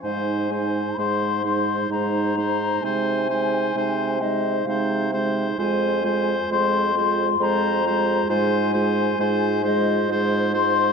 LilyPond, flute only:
\new Staff \with { instrumentName = "Flute" } { \time 3/4 \key aes \major \tempo 4 = 66 aes''4 c'''4 bes''4 | aes''4. ees''8 f''8 r8 | aes''4 c'''4 bes''4 | aes''4. ees''8 r8 c'''8 | }